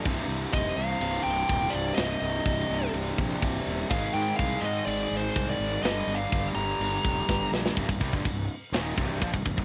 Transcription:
<<
  \new Staff \with { instrumentName = "Lead electric guitar" } { \time 4/4 \key c \minor \tempo 4 = 124 r4 ees''8 f''4 g''4 d''8 | ees''2 r2 | f''8 g''8 f''8 ees''8 \tuplet 3/2 { d''4 c''8~ c''8 d''4 } | \tuplet 3/2 { ees''4 f''8~ } f''8 bes''2 r8 |
r1 | }
  \new Staff \with { instrumentName = "Distorted electric guitar" } { \clef bass \time 4/4 \key c \minor <c, g, c>1 | <c, g, c>1 | <aes, ees aes>1 | <g, d g>1 |
<c, g,>16 <c, g,>16 <c g>16 <g, d>16 <c, g,>8 r8 <ees, bes, ees>8 <c, g, c>8 <bes, f>16 <c, g,>16 <c, g,>16 <c, g,>16 | }
  \new Staff \with { instrumentName = "Distorted electric guitar" } { \clef bass \time 4/4 \key c \minor <c, g, c>4. <c, g, c>2~ <c, g, c>8 | <c, g, c>4. <c, g, c>2~ <c, g, c>8 | <aes, ees aes>4. <aes, ees aes>2~ <aes, ees aes>8 | <g, d g>4. <g, d g>2~ <g, d g>8 |
<c, g,>16 <c, g,>16 <c g>16 <g, d>16 <c, g,>8 r8 <ees, bes, ees>8 <c, g, c>8 <bes, f>16 <c, g,>16 <c, g,>16 <c, g,>16 | }
  \new Staff \with { instrumentName = "Fingered electric bass" } { \clef bass \time 4/4 \key c \minor c,,8 c,8 f,,8 c,8 c,,8 c,,8 ees,,8 c,,8 | c,,8 c,,8 c,,8 c,,8 c,,8 bes,,8 c,,8 ees,,8 | aes,,8 aes,8 c,8 aes,8 aes,,8 aes,,8 c,8 aes,,8 | g,,8 g,,8 g,,8 g,,8 g,,8 f,,8 g,,8 bes,,8 |
c,,16 c,,16 c,16 g,,16 c,,8 r8 ees,,8 c,,8 bes,,16 c,,16 c,,16 c,,16 | }
  \new DrumStaff \with { instrumentName = "Drums" } \drummode { \time 4/4 <cymc bd>4 <cymc bd>4 cymc4 <cymc bd>4 | <cymc sn>4 <cymc bd>4 cymc8 bd8 <cymc bd>4 | <cymc bd>4 <cymc bd>4 cymc4 <cymc bd>4 | <cymc sn>4 <cymc bd>4 cymc8 bd8 <bd sn>8 sn16 sn16 |
<cymc bd>16 bd16 bd16 bd16 <cymc bd>4 <cymc sn>8 bd8 <cymc bd>16 bd16 bd16 bd16 | }
>>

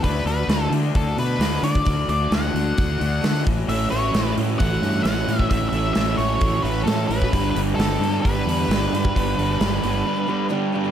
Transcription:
<<
  \new Staff \with { instrumentName = "Lead electric guitar" } { \time 4/4 \key a \mixolydian \tempo 4 = 132 b'8 b'4 r8 a'8 b'4 d''8~ | d''8 d''8 fis''2~ fis''8 r8 | e''8 cis''4 r8 fis''4 fis''4 | e''8 e''8 e''8 cis''4 b'8 a'8 b'8~ |
b'8 b'8 a'4 b'2~ | b'2. r4 | }
  \new Staff \with { instrumentName = "Twelve-string acoustic guitar" } { \time 4/4 \key a \mixolydian <d a d' fis'>8 <d a d' fis'>16 <a d' fis'>16 <d a d' fis'>8. <a d' fis'>8 <a d' fis'>16 <d a d' fis'>8 <d a d' fis'>8 <d a d' fis'>16 <a d' fis'>16 | <d a d' fis'>8 <d a d' fis'>16 <a d' fis'>16 <d a d' fis'>4~ <d a d' fis'>16 <a d' fis'>16 <d a d' fis'>8 <d a d' fis'>8 <e a cis' fis'>16 <a cis' fis'>16 | <a, e a cis' fis'>8 <e a cis' fis'>16 <a cis' fis'>16 <a, e a cis' fis'>8. <a cis' fis'>8 <a cis' fis'>16 <e a cis' fis'>8 <a, e a cis' fis'>8 <e a cis' fis'>16 <a cis' fis'>16 | <a, e a cis' fis'>8 <e a cis' fis'>16 <a cis' fis'>16 <a, e a cis' fis'>4~ <a, e a cis' fis'>16 <a cis' fis'>16 <e a cis' fis'>8 <a, e a cis' fis'>8 <e a cis' fis'>16 <a cis' fis'>16 |
<g, d g b d' g'>8 <g b d' g'>16 <g b d' g'>16 <g, d g b d' g'>8. <g b d' g'>8 <g b d' g'>16 <g b d' g'>8 <g, d g b d' g'>8 <g b d' g'>16 <g b d' g'>16 | <g, d g b d' g'>8 <g b d' g'>16 <g b d' g'>16 <g, d g b d' g'>16 <g b d' g'>4 <g b d' g'>16 <g b d' g'>8 <g, d g b d' g'>8 <g b d' g'>16 <g b d' g'>16 | }
  \new Staff \with { instrumentName = "Overdriven electric guitar" } { \clef bass \time 4/4 \key a \mixolydian r1 | r1 | <a, e a cis' e'>8 <a, e a cis' e'>8 <a, e a cis' e'>8 <a, e a cis' e'>8 <a, e a cis' e'>8 <a, e a cis' e'>8 <a, e a cis' e'>8 <a, e a cis' e'>8 | <a, e a cis' e'>8 <a, e a cis' e'>8 <a, e a cis' e'>8 <a, e a cis' e'>8 <a, e a cis' e'>8 <a, e a cis' e'>8 <a, e a cis' e'>8 <a, e a cis' e'>8 |
<g, d g b d'>8 <g, d g b d'>8 <g, d g b d'>8 <g, d g b d'>8 <g, d g b d'>8 <g, d g b d'>8 <g, d g b d'>8 <g, d g b d'>8 | <g, d g b d'>8 <g, d g b d'>8 <g, d g b d'>8 <g, d g b d'>8 <g, d g b d'>8 <g, d g b d'>8 <g, d g b d'>8 <g, d g b d'>8 | }
  \new Staff \with { instrumentName = "Overdriven electric guitar" } { \clef bass \time 4/4 \key a \mixolydian <d a d'>8 <d a d'>8 <d a d'>8 <d a d'>8 <d a d'>8 <d a d'>8 <d a d'>8 <d a d'>8 | <d a d'>8 <d a d'>8 <d a d'>8 <d a d'>8 <d a d'>8 <d a d'>8 <d a d'>8 <a, e a>8 | <a, e a>8 <a, e a>8 <a, e a>8 <a, e a>8 <a, e a>8 <a, e a>8 <a, e a>8 <a, e a>8 | <a, e a>8 <a, e a>8 <a, e a>8 <a, e a>8 <a, e a>8 <a, e a>8 <a, e a>8 <a, e a>8 |
<g, d g>8 <g, d g>8 <g, d g>8 <g, d g>8 <g, d g>8 <g, d g>8 <g, d g>8 <g, d g>8 | <g, d g>8 <g, d g>8 <g, d g>8 <g, d g>8 <g, d g>8 <g, d g>8 <g, d g>8 <g, d g>8 | }
  \new Staff \with { instrumentName = "Fingered electric bass" } { \clef bass \time 4/4 \key a \mixolydian d,8 d,8 d,8 d8 d,8 b,8 d,8 d8 | d,8 d,8 d,8 d,8 d,8 d,8 d8 a,,8 | a,,8 a,,8 a,,8 a,8 a,,8 g,8 a,,8 a,8 | a,,8 a,,8 a,,8 a,,8 a,,8 a,,8 a,8 a,,8 |
g,,8 g,,8 g,,8 g,8 g,,8 e,8 g,,8 g,8 | g,,8 g,,8 g,,8 g,,8 r2 | }
  \new DrumStaff \with { instrumentName = "Drums" } \drummode { \time 4/4 <hho bd>8 hho8 <hho sn>8 hho8 <hho bd>8 hho8 <hho sn>8 hho16 bd16 | <hho bd>8 hho8 <hho sn>8 hho8 <hho bd>8 hho8 <hho sn>8 <hho bd>8 | hho8 hho8 <hho sn>8 hho8 <hho bd>8 hho8 <hho sn>8 hho16 bd16 | <hho bd>8 hho8 <hho sn>8 hho8 <hho bd>8 hho8 <hho sn>8 hho16 bd16 |
<hho bd>8 hho8 <hho sn>8 hho8 <hho bd>8 hho8 <hho sn>8 hho16 bd16 | <hho bd>8 hho8 <hho sn>8 hho8 r4 r4 | }
>>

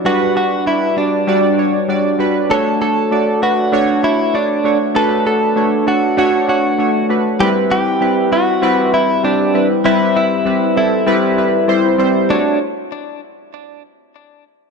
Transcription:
<<
  \new Staff \with { instrumentName = "Clean electric guitar" } { \time 4/4 \key d \major \tempo 4 = 98 fis'8 fis'8 e'8 d'2 r8 | a'8 a'4 fis'4 e'8 d'8. r16 | a'8 a'4 fis'8 fis'8 fis'4 r8 | g'8 g'4 fis'4 e'8 d'8. r16 |
e'8 e'4 e'2 r8 | d'8 r2. r8 | }
  \new Staff \with { instrumentName = "Synth keys" } { \time 4/4 \key d \major <g d' fis' b'>8 <g d' fis' b'>8 <g d' fis' b'>8 <g d' fis' d''>8 <g d' fis' d''>8 <g d' fis' cis''>8 <g d' fis' d''>8 <g d' fis' b'>8 | <a d' fis' cis''>8 <a d' fis' cis''>8 <a d' fis' d''>8 <a d' fis' b'>8 <a d' fis' cis''>8 <a d' fis' cis''>8 <a d' fis' cis''>8 <a d' fis' cis''>8 | <a d' fis' b'>8 <a d' fis' a'>8 <a d' fis' cis''>8 <a d' fis' a'>8 <a d' fis' cis''>8 <a d' fis' cis''>8 <a d' fis' cis''>8 <a d' fis' b'>8 | <g c' e' b'>8 <g c' e' b'>8 <g c' e' b'>8 <g c' e' b'>8 <g c' e' b'>8 <g c' e' b'>8 <g c' e' g'>8 <g c' e' b'>8 |
<g c' e' b'>8 <g c' e' b'>8 <g c' e' b'>8 <g c' e' a'>8 <g c' e' b'>8 <g c' e' b'>8 <g c' e' c''>8 <g c' e' c''>8 | <a d' fis' cis''>8 r2. r8 | }
>>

